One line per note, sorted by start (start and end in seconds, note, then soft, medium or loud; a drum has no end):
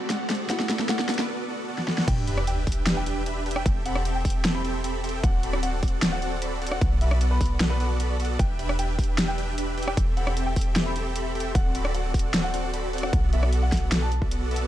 0.00 0.48 D1 medium
0.00 1.26 D3 medium
0.00 0.47 A3 medium
0.00 1.25 A3 medium
0.00 0.48 C4 medium
0.00 0.49 E4 medium
0.00 0.48 F#4 medium
0.00 0.49 F#4 medium
0.00 riser medium
0.10 0.28 C4 medium
0.10 0.28 F#4 medium
0.10 0.28 A4 medium
0.10 0.28 D5 medium
0.10 0.20 F#5 medium
0.10 0.28 F#5 medium
0.10 snare medium
0.10 closed hi-hat medium
0.30 0.47 C4 medium
0.30 0.47 F#4 medium
0.30 0.47 A4 medium
0.30 0.47 D5 medium
0.30 0.47 F#5 loud
0.30 snare medium
0.30 closed hi-hat soft
0.35 closed hi-hat medium
0.48 1.29 B1 medium
0.48 0.86 A3 medium
0.48 0.87 B3 medium
0.48 0.67 B3 medium
0.48 0.88 E4 medium
0.48 0.67 F#4 medium
0.48 0.67 A4 medium
0.48 0.67 D5 medium
0.48 0.70 F#5 loud
0.48 0.67 F#5 loud
0.48 snare medium
0.48 closed hi-hat medium
0.52 0.89 F#4 loud
0.60 snare medium
0.69 0.87 B3 loud
0.69 0.87 F#4 medium
0.69 0.87 A4 medium
0.69 0.87 D5 medium
0.69 0.87 B5 loud
0.69 snare medium
0.69 closed hi-hat medium
0.79 snare medium
0.87 1.26 A3 medium
0.87 1.27 B3 medium
0.87 1.07 B3 medium
0.87 1.28 E4 medium
0.87 1.07 F#4 medium
0.87 1.07 A4 medium
0.87 1.07 D5 medium
0.87 1.07 F#5 medium
0.87 1.10 F#5 loud
0.87 snare medium
0.87 closed hi-hat medium
0.91 1.28 F#4 loud
0.99 snare medium
1.09 1.26 B3 medium
1.09 1.26 F#4 medium
1.09 1.26 A4 medium
1.09 1.26 D5 medium
1.09 1.26 B5 loud
1.09 snare medium
1.09 open hi-hat medium
1.14 closed hi-hat medium
1.19 snare medium
1.28 1.46 B3 medium
1.28 1.46 F#4 medium
1.28 1.46 A4 medium
1.28 1.46 D5 medium
1.28 1.46 F#5 medium
1.48 1.66 B3 medium
1.48 1.66 F#4 medium
1.48 1.66 A4 medium
1.48 1.66 D5 medium
1.48 1.66 F#5 medium
1.68 1.86 B3 medium
1.68 1.86 F#4 medium
1.68 1.86 A4 medium
1.68 1.86 D5 medium
1.68 1.86 F#5 medium
1.78 snare medium
1.88 2.05 B3 medium
1.88 2.05 F#4 medium
1.88 2.05 A4 medium
1.88 2.05 D5 medium
1.88 2.05 F#5 medium
1.88 snare medium
1.98 snare medium
2.08 3.64 E1 medium
2.08 2.25 D4 medium
2.08 2.25 G4 medium
2.08 2.25 B4 medium
2.08 2.25 E5 medium
2.08 2.28 G5 loud
2.08 kick loud
2.08 closed hi-hat medium
2.08 crash loud
2.08 sub drop medium
2.27 2.45 D4 loud
2.27 2.45 G4 medium
2.27 2.45 B4 medium
2.27 2.45 E5 medium
2.27 2.45 B5 loud
2.27 closed hi-hat medium
2.38 cross-stick medium
2.47 2.65 D4 medium
2.47 2.65 G4 medium
2.47 2.65 B4 medium
2.47 2.65 E5 medium
2.47 2.65 G5 medium
2.47 2.58 G5 medium
2.47 closed hi-hat medium
2.67 2.84 D4 loud
2.67 2.84 G4 medium
2.67 2.84 B4 medium
2.67 2.84 G5 loud
2.67 kick medium
2.67 open hi-hat medium
2.72 closed hi-hat medium
2.87 3.04 D4 medium
2.87 3.04 G4 medium
2.87 3.04 B4 medium
2.87 3.04 E5 medium
2.87 3.04 G5 loud
2.87 snare loud
2.87 closed hi-hat medium
2.97 3.12 G5 loud
3.06 3.24 D4 medium
3.06 3.24 G4 medium
3.06 3.24 B4 medium
3.06 3.24 E5 medium
3.06 3.24 G5 loud
3.06 closed hi-hat medium
3.26 3.44 D4 medium
3.26 3.44 G4 medium
3.26 3.44 B4 medium
3.26 3.44 E5 medium
3.26 3.44 B5 medium
3.26 closed hi-hat medium
3.46 3.63 D4 medium
3.46 3.63 G4 medium
3.46 3.63 B4 medium
3.46 3.63 E5 medium
3.46 3.63 G5 loud
3.46 closed hi-hat medium
3.51 closed hi-hat medium
3.56 3.71 G5 medium
3.56 cross-stick medium
3.66 5.22 E1 medium
3.66 3.83 G4 medium
3.66 3.83 A4 medium
3.66 3.83 E5 medium
3.66 kick loud
3.66 closed hi-hat medium
3.85 4.03 C4 loud
3.85 4.03 G4 medium
3.85 4.03 A4 medium
3.85 4.03 E5 medium
3.85 4.01 F#5 loud
3.85 4.03 B5 loud
3.85 closed hi-hat medium
3.95 cross-stick medium
4.05 4.23 C4 medium
4.05 4.22 G4 medium
4.05 4.22 A4 medium
4.05 4.23 E5 medium
4.05 4.23 G5 medium
4.05 closed hi-hat medium
4.15 4.36 G5 medium
4.25 4.42 C4 medium
4.25 4.42 G4 medium
4.25 4.42 A4 medium
4.25 4.42 G5 loud
4.25 kick medium
4.25 open hi-hat medium
4.30 closed hi-hat medium
4.45 4.62 C4 medium
4.45 4.62 G4 medium
4.45 4.62 A4 medium
4.45 4.62 E5 medium
4.45 4.62 G5 loud
4.45 snare loud
4.45 closed hi-hat medium
4.55 4.75 B5 medium
4.64 4.82 C4 medium
4.64 4.82 G4 medium
4.64 4.82 A4 medium
4.64 4.82 E5 medium
4.64 4.82 G5 loud
4.64 closed hi-hat medium
4.84 5.01 C4 medium
4.84 5.01 G4 medium
4.84 5.01 A4 medium
4.84 5.01 E5 medium
4.84 5.01 B5 medium
4.84 closed hi-hat medium
5.04 5.21 C4 medium
5.04 5.21 G4 medium
5.04 5.21 A4 medium
5.04 5.21 E5 medium
5.04 5.21 G5 loud
5.04 closed hi-hat soft
5.09 closed hi-hat medium
5.23 6.79 D1 medium
5.23 5.41 C4 medium
5.23 5.41 F#4 medium
5.23 5.41 A4 medium
5.23 5.41 D5 medium
5.23 5.41 F#5 loud
5.23 5.44 F#5 loud
5.23 kick loud
5.23 closed hi-hat medium
5.43 5.61 C4 medium
5.43 5.61 F#4 medium
5.43 5.61 A4 medium
5.43 5.61 D5 medium
5.43 5.61 B5 loud
5.43 closed hi-hat medium
5.53 cross-stick medium
5.63 5.80 C4 medium
5.63 5.80 F#4 medium
5.63 5.80 A4 medium
5.63 5.80 D5 medium
5.63 5.73 F#5 medium
5.63 5.80 F#5 medium
5.63 closed hi-hat medium
5.83 6.00 C4 loud
5.83 6.00 F#4 medium
5.83 6.00 D5 medium
5.83 kick medium
5.83 open hi-hat medium
5.88 closed hi-hat medium
6.02 6.20 C4 medium
6.02 6.20 F#4 medium
6.02 6.20 A4 medium
6.02 6.20 D5 medium
6.02 6.20 F#5 loud
6.02 snare loud
6.02 closed hi-hat medium
6.12 6.28 F#5 medium
6.22 6.40 C4 medium
6.22 6.40 F#4 medium
6.22 6.40 A4 medium
6.22 6.40 D5 medium
6.22 6.40 F#5 loud
6.22 closed hi-hat medium
6.42 6.59 C4 medium
6.42 6.59 F#4 medium
6.42 6.59 A4 medium
6.42 6.59 D5 medium
6.42 6.59 B5 medium
6.42 closed hi-hat medium
6.62 6.79 C4 medium
6.62 6.79 F#4 medium
6.62 6.79 A4 medium
6.62 6.79 D5 medium
6.62 6.79 F#5 loud
6.62 closed hi-hat soft
6.67 closed hi-hat medium
6.72 6.87 F#5 medium
6.72 cross-stick medium
6.81 8.37 B1 medium
6.81 6.99 B3 medium
6.81 kick loud
6.81 closed hi-hat medium
7.01 7.18 B3 loud
7.01 7.18 F#4 medium
7.01 7.18 A4 medium
7.01 7.19 D5 medium
7.01 7.17 E5 loud
7.01 7.19 B5 loud
7.01 closed hi-hat medium
7.11 cross-stick medium
7.21 7.38 B3 medium
7.21 7.38 F#4 medium
7.21 7.38 A4 medium
7.21 7.38 D5 medium
7.21 7.38 F#5 medium
7.21 closed hi-hat medium
7.31 7.51 B4 medium
7.41 7.58 B3 loud
7.41 7.58 F#4 medium
7.41 7.58 F#5 loud
7.41 kick medium
7.41 open hi-hat medium
7.46 closed hi-hat medium
7.60 7.78 B3 medium
7.60 7.78 F#4 medium
7.60 7.78 A4 medium
7.60 7.78 D5 medium
7.60 7.78 F#5 loud
7.60 snare loud
7.60 closed hi-hat medium
7.70 7.91 B4 loud
7.80 7.98 B3 medium
7.80 7.98 F#4 medium
7.80 7.98 A4 medium
7.80 7.98 D5 medium
7.80 7.98 F#5 loud
7.80 closed hi-hat medium
8.00 8.17 B3 medium
8.00 8.17 F#4 medium
8.00 8.17 A4 medium
8.00 8.17 D5 medium
8.00 8.17 B5 medium
8.00 closed hi-hat medium
8.20 8.37 B3 medium
8.20 8.37 F#4 medium
8.20 8.37 A4 medium
8.20 8.37 D5 medium
8.20 8.37 F#5 loud
8.20 closed hi-hat soft
8.25 closed hi-hat medium
8.39 9.95 E1 medium
8.39 8.57 D4 medium
8.39 8.57 G4 medium
8.39 8.57 B4 medium
8.39 8.57 E5 medium
8.39 8.60 G5 loud
8.39 kick loud
8.39 closed hi-hat medium
8.59 8.76 D4 medium
8.59 8.76 G4 medium
8.59 8.76 B4 medium
8.59 8.76 E5 medium
8.59 8.76 B5 loud
8.59 closed hi-hat medium
8.69 cross-stick medium
8.78 8.96 D4 medium
8.78 8.96 G4 medium
8.78 8.96 B4 medium
8.78 8.96 E5 medium
8.78 8.96 G5 medium
8.78 8.89 G5 medium
8.78 closed hi-hat medium
8.98 9.16 G4 medium
8.98 9.16 G5 loud
8.98 kick medium
8.98 open hi-hat medium
9.04 closed hi-hat medium
9.18 9.36 D4 medium
9.18 9.36 G4 medium
9.18 9.36 B4 medium
9.18 9.36 E5 medium
9.18 9.36 G5 loud
9.18 snare loud
9.18 closed hi-hat medium
9.28 9.43 G5 loud
9.38 9.55 D4 medium
9.38 9.55 G4 medium
9.38 9.55 B4 medium
9.38 9.55 E5 medium
9.38 9.55 G5 loud
9.38 closed hi-hat medium
9.58 9.75 D4 medium
9.58 9.75 G4 medium
9.58 9.75 B4 medium
9.58 9.75 E5 medium
9.58 9.75 B5 medium
9.58 closed hi-hat medium
9.77 9.95 D4 medium
9.77 9.95 G4 medium
9.77 9.95 B4 medium
9.77 9.95 E5 medium
9.77 9.95 G5 loud
9.77 closed hi-hat soft
9.83 closed hi-hat medium
9.88 10.03 G5 medium
9.88 cross-stick medium
9.97 11.53 E1 medium
9.97 10.14 C4 medium
9.97 10.14 G4 medium
9.97 10.14 A4 medium
9.97 10.14 E5 medium
9.97 10.14 G5 medium
9.97 kick loud
9.97 closed hi-hat medium
10.17 10.34 C4 loud
10.17 10.34 G4 medium
10.17 10.34 A4 medium
10.17 10.34 E5 medium
10.17 10.32 F#5 loud
10.17 10.34 B5 loud
10.17 closed hi-hat medium
10.27 cross-stick medium
10.37 10.54 C4 medium
10.37 10.54 G4 medium
10.37 10.54 A4 medium
10.37 10.54 E5 medium
10.37 10.54 G5 medium
10.37 closed hi-hat medium
10.46 10.67 G5 medium
10.56 10.74 C4 medium
10.56 10.74 G4 medium
10.56 10.74 A4 medium
10.56 10.74 E5 medium
10.56 10.74 G5 loud
10.56 kick medium
10.56 open hi-hat loud
10.61 closed hi-hat medium
10.76 10.93 C4 medium
10.76 10.93 G4 medium
10.76 10.93 A4 medium
10.76 10.93 E5 medium
10.76 10.93 G5 loud
10.76 snare loud
10.76 closed hi-hat medium
10.86 11.06 B5 loud
10.96 11.13 C4 loud
10.96 11.13 G4 medium
10.96 11.13 A4 medium
10.96 11.13 E5 medium
10.96 11.13 G5 loud
10.96 closed hi-hat medium
11.16 11.33 C4 medium
11.16 11.33 G4 medium
11.16 11.33 A4 medium
11.16 11.33 E5 medium
11.16 11.33 B5 medium
11.16 closed hi-hat medium
11.35 11.53 C4 medium
11.35 11.53 G4 medium
11.35 11.53 A4 medium
11.35 11.53 E5 medium
11.35 11.53 G5 loud
11.35 closed hi-hat soft
11.40 closed hi-hat medium
11.55 13.11 D1 medium
11.55 11.72 C4 medium
11.55 11.72 F#4 medium
11.55 11.72 A4 medium
11.55 11.72 D5 medium
11.55 11.75 F#5 loud
11.55 kick loud
11.55 closed hi-hat medium
11.75 11.92 C4 loud
11.75 11.92 F#4 medium
11.75 11.92 A4 medium
11.75 11.92 D5 medium
11.75 11.92 B5 loud
11.75 closed hi-hat medium
11.85 cross-stick medium
11.94 12.12 C4 medium
11.94 12.12 F#4 medium
11.94 12.12 A4 medium
11.94 12.12 D5 medium
11.94 12.05 F#5 medium
11.94 12.12 F#5 medium
11.94 closed hi-hat medium
12.14 12.32 C4 loud
12.14 12.32 F#4 medium
12.14 12.32 F#5 loud
12.14 kick medium
12.14 open hi-hat loud
12.19 closed hi-hat medium
12.34 12.51 C4 medium
12.34 12.51 F#4 medium
12.34 12.51 A4 medium
12.34 12.51 D5 medium
12.34 12.51 F#5 loud
12.34 snare loud
12.34 closed hi-hat medium
12.44 12.59 F#5 medium
12.54 12.71 C4 loud
12.54 12.71 F#4 medium
12.54 12.71 A4 medium
12.54 12.71 D5 medium
12.54 12.71 F#5 loud
12.54 closed hi-hat medium
12.74 12.91 C4 medium
12.74 12.91 F#4 medium
12.74 12.91 A4 medium
12.74 12.91 D5 medium
12.74 12.91 B5 medium
12.74 closed hi-hat medium
12.93 13.11 C4 medium
12.93 13.11 F#4 medium
12.93 13.11 A4 medium
12.93 13.11 D5 medium
12.93 13.11 F#5 loud
12.93 closed hi-hat soft
12.98 closed hi-hat medium
13.03 13.19 F#5 loud
13.03 cross-stick medium
13.13 14.67 B1 medium
13.13 13.30 B3 medium
13.13 13.30 F#4 medium
13.13 13.30 D5 medium
13.13 13.30 F#5 loud
13.13 kick loud
13.13 closed hi-hat medium
13.33 13.50 B3 loud
13.33 13.50 F#4 medium
13.33 13.50 A4 medium
13.33 13.50 D5 medium
13.33 13.48 E5 loud
13.33 13.50 B5 loud
13.33 closed hi-hat medium
13.43 cross-stick medium
13.52 13.70 B3 medium
13.52 13.70 F#4 medium
13.52 13.70 A4 medium
13.52 13.70 D5 medium
13.52 13.70 F#5 medium
13.52 closed hi-hat medium
13.63 13.83 F#5 medium
13.72 13.90 B3 loud
13.72 13.90 F#4 medium
13.72 13.90 A4 medium
13.72 13.90 D5 medium
13.72 13.90 F#5 loud
13.72 kick medium
13.72 snare medium
13.72 open hi-hat loud
13.77 closed hi-hat medium
13.92 14.09 B3 medium
13.92 14.09 F#4 medium
13.92 14.09 A4 medium
13.92 14.09 D5 medium
13.92 14.09 F#5 loud
13.92 snare loud
13.92 closed hi-hat medium
14.02 14.22 A5 medium
14.12 closed hi-hat medium
14.22 14.29 B3 medium
14.22 14.29 F#4 medium
14.22 14.29 A4 medium
14.22 14.29 D5 medium
14.22 14.29 E5 medium
14.22 kick medium
14.31 14.48 B3 medium
14.31 14.48 F#4 medium
14.31 14.48 A4 medium
14.31 14.48 D5 medium
14.31 14.48 F#5 medium
14.31 closed hi-hat medium
14.51 14.60 B3 loud
14.51 14.60 F#4 medium
14.51 14.60 A4 medium
14.51 14.60 D5 medium
14.51 14.60 E5 loud
14.51 closed hi-hat medium
14.56 closed hi-hat medium
14.61 14.67 B3 loud
14.61 14.67 F#4 medium
14.61 14.67 A4 medium
14.61 14.67 D5 medium
14.61 14.67 F#5 loud